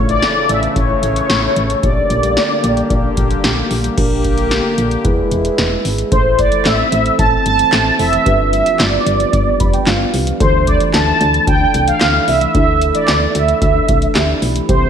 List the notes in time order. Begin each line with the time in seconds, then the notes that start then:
Already playing: A1 C#3 E3 A3
0.09 A3 D5, closed hi-hat
0.22 A4, snare, closed hi-hat
0.36 E4
0.49 A1 C#4 E5, closed hi-hat
0.63 A3, closed hi-hat
0.76 A1 A4 C#5, kick, closed hi-hat
0.90 E4
1.03 A1 C#4, closed hi-hat
1.16 A3, closed hi-hat
1.30 A1 A4, snare, closed hi-hat
1.56 A1 C#4, closed hi-hat
1.70 A3, closed hi-hat
1.83 A#1 D3 A#3 G4 D5, kick, closed hi-hat
1.97 D4
2.10 A#1 A#3, closed hi-hat
2.23 G3, closed hi-hat
2.37 G4, snare, closed hi-hat
2.50 D4
2.64 A#1 A#3, closed hi-hat
2.77 G3, closed hi-hat
2.90 A#1 G4, kick, closed hi-hat
3.04 D4
3.17 A#1 A#3, kick, closed hi-hat
3.30 G3, closed hi-hat
3.44 A#1 G4, snare, closed hi-hat
3.71 A#1 A#3, open hi-hat
3.84 G3, closed hi-hat
3.98 A#1 D3 A#3 D4 G4 A#4, kick, closed hi-hat, crash
4.24 kick, closed hi-hat
4.38 closed hi-hat
4.51 snare, closed hi-hat
4.78 A#1, closed hi-hat
4.91 closed hi-hat
5.05 E1 G#3 E4 G#4 B4, kick, closed hi-hat
5.31 E1, closed hi-hat
5.45 closed hi-hat
5.58 E1, snare, closed hi-hat
5.85 G#1, open hi-hat
5.98 closed hi-hat
6.12 A1 E4 A4 C5, kick, closed hi-hat
6.39 A3 D5, kick, closed hi-hat
6.52 E3, closed hi-hat
6.65 A1 E5, snare, clap, closed hi-hat
6.79 C4
6.92 A1 A3, closed hi-hat
7.06 E3, closed hi-hat
7.19 A1 A5, kick, closed hi-hat
7.32 C4
7.46 G1 A3 A5, closed hi-hat
7.59 E3, closed hi-hat
7.73 A1 E4, snare, clap, closed hi-hat
7.86 C4
7.99 F1 A3 E4 A4 C5 E5, open hi-hat
8.13 E3, closed hi-hat
8.26 G1 D4 F4 G4 B4, kick, closed hi-hat
8.53 G3 E5, closed hi-hat
8.66 F3, closed hi-hat
8.80 G1 F4 D5, snare, clap, closed hi-hat
8.93 B3
9.07 G1 G3, closed hi-hat
9.20 F3, closed hi-hat
9.33 G1, kick, closed hi-hat
9.47 B3
9.60 F1 G3 B5, kick, closed hi-hat
9.73 F3 G5, closed hi-hat
9.87 G1 F4 F5, snare, clap, closed hi-hat
10.00 B3
10.14 C2 G3, open hi-hat
10.27 F3, closed hi-hat
10.40 D2 E3 D4 E4 A4 C5, kick, closed hi-hat
10.67 A3 D5, kick, closed hi-hat
10.80 E3, closed hi-hat
10.94 D2 E4 A5, snare, clap, closed hi-hat
11.07 D4
11.21 D2 A3, closed hi-hat
11.34 E3, closed hi-hat
11.47 D2 G5, kick, closed hi-hat
11.61 D4
11.74 C2 A3, closed hi-hat
11.88 E3 F5, closed hi-hat
12.01 D2 E4, snare, clap, closed hi-hat
12.15 D4
12.28 C2 A3 E5, open hi-hat
12.41 E3, closed hi-hat
12.55 D2 D4 E4 A4 E5, kick, closed hi-hat
12.82 A3, closed hi-hat
12.95 E3 D5, closed hi-hat
13.08 D2 E4, snare, clap, closed hi-hat
13.22 D4
13.35 D2 A3 E5, closed hi-hat
13.48 E3, closed hi-hat
13.62 D2, kick, closed hi-hat
13.75 D4
13.88 C2 A3, kick, closed hi-hat
14.02 E3, closed hi-hat
14.15 D2 D4 E4 G4, snare, clap, closed hi-hat
14.29 D4
14.42 B1 A3, open hi-hat
14.56 E3, closed hi-hat
14.69 C2 C3 E3 G3 C4 E4 G4 C5, kick, closed hi-hat